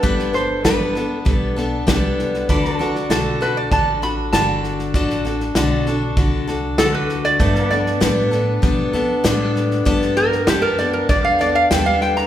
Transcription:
Already playing: pedal steel guitar A4 D5
0.03 upright bass G1, steel-string acoustic guitar G3 B3 D4 A4, resonator guitar played with a steel bar B4, kick, snare
0.19 snare
0.33 steel-string acoustic guitar D4 A4, resonator guitar played with a steel bar C5, snare
0.64 steel-string acoustic guitar G3 B3 D4 A4, resonator guitar played with a steel bar B4, kick, snare, hi-hat pedal
0.95 steel-string acoustic guitar B3 D4 A4, snare
1.25 upright bass B1, steel-string acoustic guitar G3 B3 D4 A4, kick, snare
1.56 steel-string acoustic guitar B3 D4 A4, snare
1.87 upright bass C2, steel-string acoustic guitar G3 B3 D4 A4, kick, snare, hi-hat pedal
2.19 snare
2.34 snare
2.49 upright bass D2, steel-string acoustic guitar D3 D4 F#4 A4, pedal steel guitar B4 D5, kick, snare
2.65 snare
2.75 pedal steel guitar A4
2.79 steel-string acoustic guitar D4 F#4 A4, snare
2.95 snare
3.10 upright bass B1, steel-string acoustic guitar D3 D4 F#4 A4, resonator guitar played with a steel bar A4, snare, hi-hat pedal
3.41 steel-string acoustic guitar D4 F#4 A4, resonator guitar played with a steel bar B4, snare
3.57 resonator guitar played with a steel bar D5
3.71 upright bass A1, steel-string acoustic guitar D3 D4 F#4 A4, resonator guitar played with a steel bar A5, kick, snare
4.02 steel-string acoustic guitar D4 F#4 A4, resonator guitar played with a steel bar B5, snare
4.33 upright bass G1, steel-string acoustic guitar D3 D4 F#4 A4, resonator guitar played with a steel bar A5, snare, hi-hat pedal
4.64 snare
4.79 snare
4.94 upright bass A1, steel-string acoustic guitar D3 D4 F#4 A4, kick, snare
5.10 snare
5.25 steel-string acoustic guitar D4 F#4 A4, snare
5.40 snare
5.55 upright bass B1, steel-string acoustic guitar D3 D4 F#4 A4, snare, hi-hat pedal
5.86 steel-string acoustic guitar D4 F#4 A4, snare
6.17 upright bass C2, steel-string acoustic guitar D3 D4 F#4 A4, kick, snare
6.47 steel-string acoustic guitar D4 F#4 A4, snare
6.78 upright bass D2, steel-string acoustic guitar D3 D4 F#4 A4, resonator guitar played with a steel bar A4, snare, hi-hat pedal
6.94 resonator guitar played with a steel bar B4
7.09 snare
7.25 resonator guitar played with a steel bar D5, snare
7.40 upright bass G2, steel-string acoustic guitar G3 B3 D4 A4, pedal steel guitar A3 D5, kick, snare
7.55 snare
7.65 pedal steel guitar B3
7.70 steel-string acoustic guitar B3 D4 A4, resonator guitar played with a steel bar D5, snare
7.86 snare
8.00 upright bass A2, steel-string acoustic guitar G3 B3 D4 A4, snare, hi-hat pedal
8.31 steel-string acoustic guitar B3 D4 A4, snare
8.62 upright bass B2, steel-string acoustic guitar G3 B3 D4 A4, kick, snare
8.93 steel-string acoustic guitar B3 D4 A4, muted upright bass stroke, snare
9.24 upright bass A2, steel-string acoustic guitar G3 B3 D4 A4, snare, hi-hat pedal
9.56 snare
9.71 snare
9.85 upright bass G2, steel-string acoustic guitar G3 B3 D4 A4, kick, snare
10.02 snare
10.17 steel-string acoustic guitar B3 D4, resonator guitar played with a steel bar A#4, snare
10.32 snare
10.47 upright bass F#2, steel-string acoustic guitar B3 D4 A4, resonator guitar played with a steel bar G4, snare, hi-hat pedal
10.62 resonator guitar played with a steel bar A#4
10.78 steel-string acoustic guitar B3 D4 A4, resonator guitar played with a steel bar D5, snare
10.93 resonator guitar played with a steel bar A#4
11.09 upright bass E2, steel-string acoustic guitar G3 B3 D4 A4, resonator guitar played with a steel bar D5, kick, snare
11.25 resonator guitar played with a steel bar F5
11.39 steel-string acoustic guitar B3 D4 A4, resonator guitar played with a steel bar D5, snare
11.55 resonator guitar played with a steel bar F5
11.71 upright bass D#2, steel-string acoustic guitar G3 B3 D4 A4, resonator guitar played with a steel bar G5, snare, hi-hat pedal
11.86 resonator guitar played with a steel bar F5
12.01 resonator guitar played with a steel bar G5, snare
12.17 resonator guitar played with a steel bar A#5, snare

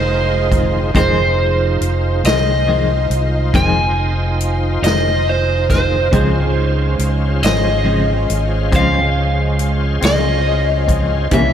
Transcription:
Already playing: fingered electric bass F1, tonewheel organ G#3 D#4 F4 C5, overdriven electric guitar C5
0.51 clean electric guitar D#3 G#3 C4, kick, closed hi-hat
0.94 fingered electric bass F1, clean electric guitar F2 D#3 G#3 C4, grand piano D#4 F4 G#4 C5, tonewheel organ D#4 F4 C5, overdriven electric guitar C5, kick, closed hi-hat
1.81 fingered electric bass F1, closed hi-hat
2.24 fingered electric bass C2, clean electric guitar D#3 G#3 C4, overdriven electric guitar D#5, snare, closed hi-hat
2.67 clean electric guitar F2 D#3 G#3 C4
3.10 fingered electric bass C2, closed hi-hat
3.54 fingered electric bass F1, clean electric guitar F2 D#3 G#3 C4, overdriven electric guitar G#5, kick, closed hi-hat
4.40 closed hi-hat
4.82 fingered electric bass F1, clean electric guitar D#3 G#3 C4, overdriven electric guitar D#5, closed hi-hat
4.86 snare
5.29 overdriven electric guitar C5
5.70 clean electric guitar D#3 G#3 C4, overdriven electric guitar C5, kick, snare, closed hi-hat
6.11 fingered electric bass C#2, clean electric guitar C#3 F3 G#3 C4, tonewheel organ G#3 C#4 F4 C5, grand piano D#4 F4 G#4 C5, kick, closed hi-hat
6.99 fingered electric bass C#2, closed hi-hat
7.42 fingered electric bass G#1, clean electric guitar F3 G#3 C4, overdriven electric guitar D#5, snare, closed hi-hat
7.84 clean electric guitar C#3 F3 G#3 C4
8.30 fingered electric bass G#1, closed hi-hat
8.72 fingered electric bass C#2, clean electric guitar C#3 F3 G#3 C4, kick, closed hi-hat
8.76 overdriven electric guitar F5
9.59 closed hi-hat
10.01 fingered electric bass C#2, clean electric guitar F3 G#3 C4, overdriven electric guitar D#5, snare, closed hi-hat
10.87 clean electric guitar F3 G#3 C4, kick, closed hi-hat
11.31 fingered electric bass C2, clean electric guitar C3 E3 A#3 C#4, tonewheel organ F3 B3 D4 C#5, grand piano E4 G4 A#4 C#5, overdriven electric guitar E5, kick, closed hi-hat

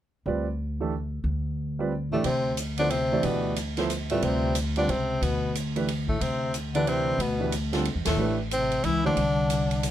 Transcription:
0.26 upright bass D2, grand piano G3 C4 F4 B4 D5
0.80 grand piano E3 A3 D4 G4 A4
1.24 upright bass D2
1.79 grand piano G3 C4 F4 B4 D5
2.11 bass clarinet A2, grand piano E3 A3 D4 G4 D5, tenor saxophone A3
2.23 upright bass D2, bass clarinet C3, tenor saxophone C4, ride
2.57 hi-hat pedal, ride
2.78 bass clarinet D3, grand piano F3 B3 E4 A4 C5, tenor saxophone D4, ride
2.90 bass clarinet C3, tenor saxophone C4, ride
3.12 grand piano E3 A3 D4 G4 D5
3.23 upright bass D2, bass clarinet B2, tenor saxophone B3, ride
3.56 hi-hat pedal, ride
3.77 grand piano F3 B3 E4 A4 C5, snare, ride
3.90 hi-hat pedal, ride
4.10 bass clarinet A2, grand piano G3 C4 F4 B4 D5, tenor saxophone A3, ride
4.22 upright bass D2, bass clarinet C3, tenor saxophone C4, ride
4.55 hi-hat pedal, ride
4.76 bass clarinet D3, grand piano G3 C4 F4 B4 D5, tenor saxophone D4, ride
4.88 upright bass C#2, bass clarinet C3, tenor saxophone C4, ride
5.21 upright bass D2, bass clarinet B2, tenor saxophone B3, ride
5.55 hi-hat pedal, ride
5.76 grand piano E3 A3 D4 G4 B4, ride
5.88 ride
6.08 bass clarinet A2, tenor saxophone A3, kick
6.20 upright bass D2, bass clarinet C3, tenor saxophone C4, ride
6.54 hi-hat pedal, ride
6.74 bass clarinet D3, grand piano E3 A3 D4 G4 B4, tenor saxophone D4, ride
6.87 bass clarinet C3, tenor saxophone C4, ride
7.18 upright bass D2, bass clarinet B2, tenor saxophone B3, ride
7.40 grand piano E3 A3 D4 G4 B4
7.52 hi-hat pedal, ride
7.73 grand piano D3 G3 C4 F4 A4, snare, ride
7.85 ride
7.95 upright bass E2
8.05 upright bass D#2, bass clarinet A2, tenor saxophone A3, snare, ride
8.17 upright bass A1, grand piano E3 A3 D4 G4 B4
8.51 bass clarinet C3, tenor saxophone C4, hi-hat pedal, ride
8.72 ride
8.84 upright bass C#2, bass clarinet E3, tenor saxophone E4, ride
9.04 bass clarinet D3, grand piano E3 A3 D4 G4 C5, tenor saxophone D4
9.16 upright bass C2, ride
9.50 hi-hat pedal, ride
9.71 ride
9.83 hi-hat pedal, ride

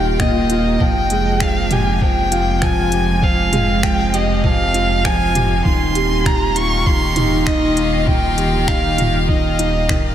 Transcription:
Already playing: analog synth bass D#1, string quartet D#3 A#3 G4 F5, upright piano D#3 G3 A#3 F4, violin G5, swell
0.20 upright piano A#3, violin D#5, finger snap, kick, mid tom
0.50 upright piano D#4, closed hi-hat
0.80 analog synth bass F1, upright piano F3, string quartet F3, violin G5, kick, mid tom
1.10 upright piano G#3, closed hi-hat
1.21 string quartet C4
1.40 upright piano F3, violin F5, finger snap, kick
1.65 string quartet G#3
1.71 upright piano G4, violin G#5, closed hi-hat, mid tom
2.01 upright piano F3, violin G5, kick
2.32 upright piano F4, closed hi-hat
2.62 upright piano F3, violin G#5, finger snap, kick, mid tom
2.92 upright piano G4, closed hi-hat
3.22 upright piano F3, violin F5, kick
3.53 upright piano G#3, closed hi-hat, mid tom
3.83 upright piano F3, violin G5, finger snap, kick
4.14 upright piano G4, violin D#5, closed hi-hat
4.44 upright piano F3, violin F5, kick, mid tom
4.74 upright piano F4, closed hi-hat
5.04 upright piano F3, violin G#5, finger snap, kick
5.35 upright piano G4, closed hi-hat, mid tom
5.65 analog synth bass D#1, upright piano D#3, string quartet D#3, violin C6, kick
5.82 string quartet G4
5.89 string quartet A#3
5.95 upright piano G3, closed hi-hat
6.25 upright piano D#3, violin A#5, finger snap, kick, mid tom
6.56 upright piano F4, violin C#6, closed hi-hat
6.63 string quartet F5
6.86 upright piano D#3, violin C6, kick
7.16 upright piano D#4, closed hi-hat, mid tom
7.46 upright piano D#3, violin D#5, finger snap, kick
7.77 upright piano F4, closed hi-hat
8.07 upright piano D#3, violin G5, kick, mid tom
8.37 upright piano G3, closed hi-hat
8.68 upright piano D#3, violin F5, finger snap, kick
8.98 upright piano F4, closed hi-hat, mid tom
9.27 upright piano D#3, violin D#5, kick
9.59 upright piano D#4, closed hi-hat
9.89 upright piano D#3, finger snap, kick, mid tom

